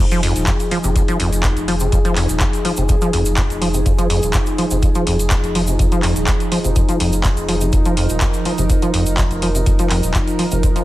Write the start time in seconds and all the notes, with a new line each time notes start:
0.00 F1 F3 D#4 G#4
0.11 F3, closed hi-hat, shaker
0.23 F2, open hi-hat
0.36 D#1, closed hi-hat, shaker
0.47 F2, kick, clap, closed hi-hat, shaker
0.60 closed hi-hat, shaker
0.71 F3, open hi-hat
0.84 F1 C3, closed hi-hat, shaker
0.95 F2, kick, closed hi-hat, shaker
1.08 F3, closed hi-hat, shaker
1.19 F1 F2, open hi-hat
1.33 closed hi-hat, shaker
1.43 F2, kick, clap, closed hi-hat, shaker
1.57 F1, closed hi-hat, shaker
1.68 F3, open hi-hat
1.80 C3, closed hi-hat, shaker
1.92 F1 F2, kick, closed hi-hat, shaker
2.05 F3, closed hi-hat, shaker
2.16 F2, clap, open hi-hat
2.29 D#1, closed hi-hat, shaker
2.40 F2, kick, clap, closed hi-hat, shaker
2.53 closed hi-hat, shaker
2.65 F3, open hi-hat
2.77 F1 C3, closed hi-hat, shaker
2.89 F2, kick, closed hi-hat, shaker
3.01 F3, closed hi-hat, shaker
3.13 F1 F2, open hi-hat
3.25 closed hi-hat, shaker
3.37 F2, kick, clap, closed hi-hat, shaker
3.50 F1, closed hi-hat, shaker
3.61 F3, open hi-hat
3.74 C3, closed hi-hat, shaker
3.86 F1 F2, kick, closed hi-hat, shaker
3.98 F3, closed hi-hat, shaker
4.10 F2, open hi-hat
4.23 D#1, closed hi-hat, shaker
4.33 F2, kick, clap, closed hi-hat, shaker
4.46 closed hi-hat, shaker
4.58 F3, open hi-hat
4.71 F1 C3, closed hi-hat, shaker
4.82 F2, kick, closed hi-hat, shaker
4.95 F3, closed hi-hat, shaker
5.07 F1 F2, open hi-hat
5.19 closed hi-hat, shaker
5.30 F2, kick, clap, closed hi-hat, shaker
5.43 F1, closed hi-hat, shaker
5.55 F3, open hi-hat
5.67 C3, closed hi-hat, shaker
5.79 F1 F2, kick, closed hi-hat, shaker
5.92 F3, closed hi-hat, shaker
6.03 F2, clap, open hi-hat
6.16 D#1, closed hi-hat, shaker
6.27 F2, kick, clap, closed hi-hat, shaker
6.40 closed hi-hat, shaker
6.52 F3, open hi-hat
6.64 F1 C3, closed hi-hat, shaker
6.76 F2, kick, closed hi-hat, shaker
6.89 F3, closed hi-hat, shaker
7.00 F1 F2, open hi-hat
7.13 closed hi-hat, shaker
7.24 F2, kick, clap, closed hi-hat, shaker
7.37 F1, closed hi-hat, shaker
7.49 F3, open hi-hat
7.61 C3, closed hi-hat, shaker
7.73 F1 F2 A#4, kick, closed hi-hat, shaker
7.85 F3, closed hi-hat, shaker
7.97 F2, open hi-hat
8.09 D#1, closed hi-hat, shaker
8.21 F2, kick, clap, closed hi-hat, shaker
8.34 closed hi-hat, shaker
8.45 F3, open hi-hat
8.58 F1 C3, closed hi-hat, shaker
8.70 F2, kick, closed hi-hat, shaker
8.82 F3, closed hi-hat, shaker
8.94 F1 F2, open hi-hat
9.06 closed hi-hat, shaker
9.17 F2, kick, clap, closed hi-hat, shaker
9.31 F1, closed hi-hat, shaker
9.42 F3, open hi-hat
9.55 C3, closed hi-hat, shaker
9.66 F1 F2, kick, closed hi-hat, shaker
9.79 F3, closed hi-hat, shaker
9.90 F2, clap, open hi-hat
10.03 D#1, closed hi-hat, shaker
10.14 F2, kick, clap, closed hi-hat, shaker
10.27 closed hi-hat, shaker
10.39 F3, open hi-hat
10.51 F1 C3, closed hi-hat, shaker
10.63 F2, kick, closed hi-hat, shaker
10.76 F3, closed hi-hat, shaker